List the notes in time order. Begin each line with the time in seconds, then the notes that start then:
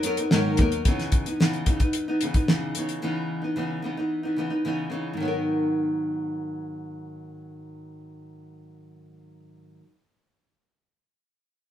Already playing: F#2
0.03 F#3 B3 D#4 A#4, closed hi-hat
0.17 B3 D#4 A#4, closed hi-hat
0.22 F#3
0.31 G#2 D#3 F#3 B3 D#4 A#4, snare
0.57 D#2 F#3 B3 D#4, kick, closed hi-hat
0.61 A#4
0.72 closed hi-hat
0.85 C#3 E3 B3 D#4, kick, closed hi-hat
0.99 snare, closed hi-hat
1.12 kick, closed hi-hat
1.26 E3 B3 D#4, closed hi-hat
1.40 C#3 E3 B3 D#4, snare
1.53 closed hi-hat
1.66 C#3 E3 B3 D#4, kick, closed hi-hat
1.80 B3 D#4, kick, closed hi-hat
1.84 E3
1.93 closed hi-hat
2.08 E3 B3 D#4
2.21 C#3 E3 B3, closed hi-hat
2.25 D#4
2.34 B3 D#4, kick, closed hi-hat
2.38 E3
2.48 C#3 E3 B3 D#4, snare
2.75 C#3 E3 B3, closed hi-hat
2.79 D#4
2.89 closed hi-hat
3.02 C#3 E3 B3 D#4
3.42 E3 B3 D#4
3.56 C#3 E3 B3 D#4
3.82 C#3 E3 B3 D#4
3.97 E3 B3 D#4
4.23 E3 B3 D#4
4.36 C#3 E3 B3 D#4
4.50 E3 B3 D#4
4.65 C#3 E3 B3 D#4
4.90 C#3 E3 B3 D#4
5.13 G#2 D#3
5.20 F#3 B3
5.25 D#4 A#4